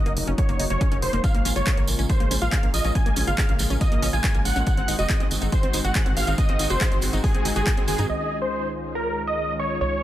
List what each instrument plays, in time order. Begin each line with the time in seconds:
Already playing: analog synth pad C#3 F#3 A#3 D#4, supersaw synth D#5
0.06 analog synth bass F#1, synth arpeggio sound A#3, closed hi-hat
0.17 analog synth bass F#1, analog synth pad C#3 F#3 A#3 D#4, open hi-hat
0.27 analog synth bass F#1, synth arpeggio sound C#4, closed hi-hat
0.38 analog synth pad C#3 F#3 A#3 D#4, supersaw synth C#5, kick, closed hi-hat
0.49 analog synth bass F#1, analog synth pad C#3 F#3 A#3 D#4, synth arpeggio sound A#3, closed hi-hat
0.60 analog synth bass F#1, synth arpeggio sound D#4, open hi-hat
0.70 analog synth bass F#1, analog synth pad C#3 F#3 A#3 D#4, synth arpeggio sound A#3, supersaw synth C#5, closed hi-hat
0.81 synth arpeggio sound C#4, kick, closed hi-hat
0.92 analog synth bass F#1, analog synth pad C#3 F#3 A#3 D#4, synth arpeggio sound C#4, closed hi-hat
1.02 analog synth bass F#1, supersaw synth C5, open hi-hat
1.13 analog synth bass F#1, analog synth pad C#3 F#3 A#3 D#4, synth arpeggio sound A#3, closed hi-hat
1.24 analog synth pad C#3 G#3 A#3 F4, supersaw synth F5, kick, closed hi-hat, tambourine
1.34 analog synth bass A#1, synth arpeggio sound A#3, closed hi-hat
1.45 analog synth bass A#1, analog synth pad C#3 G#3 A#3 F4, synth arpeggio sound C#4, open hi-hat, tambourine
1.56 analog synth bass G#1, synth arpeggio sound F4, supersaw synth C#5, closed hi-hat, tambourine
1.67 analog synth pad C#3 G#3 A#3 F4, synth arpeggio sound G#4, kick, clap, closed hi-hat, tambourine
1.77 analog synth bass A#1, synth arpeggio sound A#3, closed hi-hat
1.87 analog synth bass A#1, analog synth pad C#3 G#3 A#3 F4, open hi-hat, tambourine
1.99 analog synth bass A#1, synth arpeggio sound C#4, closed hi-hat, tambourine
2.09 analog synth pad C#3 G#3 A#3 F4, supersaw synth C5, kick, closed hi-hat, tambourine
2.20 analog synth bass A#1, analog synth pad C#3 G#3 A#3 F4, synth arpeggio sound A#3, closed hi-hat
2.31 analog synth bass A#1, synth arpeggio sound C#4, open hi-hat, tambourine
2.41 analog synth bass A#1, analog synth pad C#3 G#3 A#3 F4, synth arpeggio sound F4, supersaw synth F5, closed hi-hat, tambourine
2.52 synth arpeggio sound G#4, kick, clap, closed hi-hat, tambourine
2.63 analog synth bass A#1, analog synth pad C#3 G#3 A#3 F4, synth arpeggio sound A#3, closed hi-hat
2.74 analog synth bass A#1, supersaw synth D#5, open hi-hat, tambourine
2.85 analog synth bass A#1, analog synth pad C#3 G#3 A#3 F4, synth arpeggio sound C#4, closed hi-hat, tambourine
2.95 analog synth pad C#3 G#3 A#3 F4, supersaw synth G#5, kick, closed hi-hat, tambourine
3.06 analog synth bass A#1, synth arpeggio sound A#3, closed hi-hat
3.16 analog synth bass A#1, analog synth pad C#3 G#3 A#3 F4, synth arpeggio sound C#4, open hi-hat, tambourine
3.27 analog synth bass G#1, synth arpeggio sound F4, supersaw synth F5, closed hi-hat, tambourine
3.38 analog synth pad C#3 G#3 A#3 F4, synth arpeggio sound G#4, kick, clap, closed hi-hat, tambourine
3.49 analog synth bass A#1, synth arpeggio sound A#3, closed hi-hat
3.59 analog synth bass A#1, analog synth pad C#3 G#3 A#3 F4, clap, open hi-hat, tambourine
3.70 analog synth bass A#1, synth arpeggio sound C#4, closed hi-hat, tambourine
3.81 analog synth pad C#3 G#3 A#3 F4, supersaw synth D#5, kick, closed hi-hat, tambourine
3.92 analog synth bass A#1, analog synth pad C#3 G#3 A#3 F4, synth arpeggio sound A#3, closed hi-hat
4.02 analog synth bass A#1, synth arpeggio sound C#4, open hi-hat, tambourine
4.13 analog synth bass A#1, analog synth pad C#3 G#3 A#3 F4, synth arpeggio sound F4, supersaw synth G#5, closed hi-hat, tambourine
4.24 synth arpeggio sound G#4, kick, clap, closed hi-hat, tambourine
4.34 analog synth bass A#1, analog synth pad C#3 G#3 A#3 F4, synth arpeggio sound A#3, closed hi-hat
4.45 analog synth bass A#1, supersaw synth F#5, open hi-hat, tambourine
4.56 analog synth bass A#1, analog synth pad C#3 G#3 A#3 F4, synth arpeggio sound C#4, closed hi-hat, tambourine
4.66 analog synth pad D#3 G#3 C4 F#4, supersaw synth F#5, kick, closed hi-hat, tambourine
4.77 analog synth bass G#1, synth arpeggio sound C4, closed hi-hat
4.88 analog synth bass G#1, analog synth pad D#3 G#3 C4 F#4, synth arpeggio sound D#4, open hi-hat, tambourine
4.99 analog synth bass F#1, synth arpeggio sound F#4, supersaw synth D#5, closed hi-hat, tambourine
5.09 analog synth pad D#3 G#3 C4 F#4, synth arpeggio sound G#4, kick, clap, closed hi-hat, tambourine
5.20 analog synth bass G#1, synth arpeggio sound C4, closed hi-hat
5.31 analog synth bass G#1, analog synth pad D#3 G#3 C4 F#4, open hi-hat, tambourine
5.41 analog synth bass G#1, synth arpeggio sound D#4, closed hi-hat, tambourine
5.52 analog synth pad D#3 G#3 C4 F#4, supersaw synth C5, kick, closed hi-hat, tambourine
5.63 analog synth bass G#1, analog synth pad D#3 G#3 C4 F#4, synth arpeggio sound C4, closed hi-hat
5.73 analog synth bass G#1, synth arpeggio sound D#4, open hi-hat, tambourine
5.84 analog synth bass G#1, analog synth pad D#3 G#3 C4 F#4, synth arpeggio sound F#4, supersaw synth F#5, closed hi-hat, tambourine
5.95 synth arpeggio sound G#4, kick, clap, closed hi-hat, tambourine
6.06 analog synth bass G#1, analog synth pad D#3 G#3 C4 F#4, synth arpeggio sound C4, closed hi-hat
6.17 analog synth bass G#1, supersaw synth F5, open hi-hat, tambourine
6.27 analog synth bass G#1, analog synth pad D#3 G#3 C4 F#4, synth arpeggio sound D#4, closed hi-hat, tambourine
6.38 analog synth pad D#3 G#3 C4 F#4, supersaw synth D#5, kick, closed hi-hat, tambourine
6.49 analog synth bass G#1, synth arpeggio sound C4, closed hi-hat
6.59 analog synth bass G#1, analog synth pad D#3 G#3 C4 F#4, synth arpeggio sound D#4, open hi-hat, tambourine
6.70 analog synth bass F#1, synth arpeggio sound F#4, supersaw synth C5, closed hi-hat, tambourine
6.81 analog synth pad D#3 G#3 C4 F#4, synth arpeggio sound G#4, kick, clap, closed hi-hat
6.92 analog synth bass G#1, synth arpeggio sound C4, closed hi-hat
7.02 analog synth bass G#1, analog synth pad D#3 G#3 C4 F#4, clap, open hi-hat, tambourine
7.13 analog synth bass G#1, synth arpeggio sound D#4, closed hi-hat, tambourine
7.24 analog synth pad D#3 G#3 C4 F#4, supersaw synth G#4, kick, open hi-hat, tambourine
7.35 analog synth bass G#1, analog synth pad D#3 G#3 C4 F#4, synth arpeggio sound C4, closed hi-hat
7.45 analog synth bass G#1, synth arpeggio sound D#4, open hi-hat, tambourine
7.56 analog synth bass G#1, analog synth pad D#3 G#3 C4 F#4, synth arpeggio sound F#4, supersaw synth G#4, closed hi-hat, tambourine
7.66 synth arpeggio sound G#4, kick, clap, closed hi-hat, tambourine
7.77 analog synth bass G#1, analog synth pad D#3 G#3 C4 F#4, synth arpeggio sound C4, closed hi-hat
7.88 analog synth bass G#1, supersaw synth G#4, open hi-hat, tambourine
7.98 analog synth bass G#2, analog synth pad D#3 G#3 C4 F#4, synth arpeggio sound D#4, closed hi-hat, tambourine
8.09 analog synth bass C#2, analog synth pad D#3 G#3 C#4 F4, supersaw synth D#5, synth pluck D#5
8.31 analog synth pad D#3 G#3 C#4 F4
8.42 supersaw synth C5, synth pluck C5
8.52 analog synth pad D#3 G#3 C#4 F4
8.74 analog synth pad D#3 G#3 C#4 F4
8.95 analog synth pad D#3 G#3 C#4 F4, supersaw synth A#4, synth pluck A#4
9.06 analog synth pad D#3 G#3 C#4 F4
9.27 analog synth pad D#3 G#3 C#4 F4, supersaw synth D#5, synth pluck D#5
9.49 analog synth pad D#3 G#3 C#4 F4
9.59 supersaw synth C#5, synth pluck C#5
9.70 analog synth pad D#3 G#3 C#4 F4
9.81 analog synth bass C#2, analog synth pad D#3 G#3 C#4 F4, supersaw synth C#5, synth pluck C#5